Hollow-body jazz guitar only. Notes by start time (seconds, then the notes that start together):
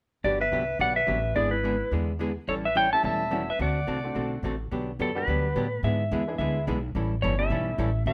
0.24 D3 F#3 B3 D4 G4
0.52 D3 F#3 B3 D4 G4
0.79 D3 F#3 B3 D4 G4
1.07 D3 F#3 B3 D4 G4
1.36 D3 G#3 B3 E4 G#4
1.64 D3 G#3 B3 E4 G#4
1.92 D3 G#3 B3 E4 G#4
2.19 D3 G#3 B3 E4 G#4
2.48 E3 G3 C#4 E4 A4
2.75 E3 G3 C#4 E4 A4
3.03 E3 G3 C#4 E4 A4
3.31 E3 G3 C#4 E4 A4
3.59 D3 A3 C4 F#4 A4
3.87 D3 A3 C4 F#4 A4
4.14 D3 A3 C4 F#4 A4
4.44 D3 A3 C4 F#4 A4
4.71 D3 F#3 B3 D4 G4
5.00 D3 F#3 B3 D4 G4
5.28 D3 F#3 B3 D4 G4
5.56 D3 F#3 B3 D4 G4
5.84 D3 G#3 B3 E4 G#4
6.12 D3 G#3 B3 E4 G#4
6.40 D3 G#3 B3 E4 G#4
6.67 D3 G#3 B3 E4 G#4
6.95 E3 G3 C#4 E4 A4
7.23 E3 G3 C#4 E4 A4
7.50 E3 G3 C#4 E4 A4
7.78 E3 G3 C#4 E4 A4
8.07 D3 A3 C4 F#4 A4